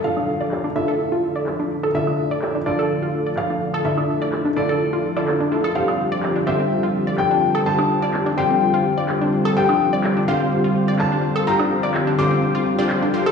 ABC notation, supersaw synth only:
X:1
M:4/4
L:1/16
Q:1/4=126
K:Cmix
V:1 name="Supersaw synth"
[D,DFA]6 [D,DEFA]8- [D,DEFA]2 | [D,DEFA]6 [D,DFA]8- [D,DFA]2 | [D,DEFA]6 [D,DEFA]4- [D,DEFA] [D,DEFA]3 [DEFA]2 | [D,CFGc]6 [D,CFGc]8- [D,CFGc]2 |
[D,CFGc]6 [D,CFGc]8- [D,CFGc]2 | [D,CFGc]6 [D,CFGc]8- [D,CFGc]2 | [D,CFGc]6 [D,CFGc]4- [D,CFGc] [D,CFGc]3 [D,CFGc]2 |]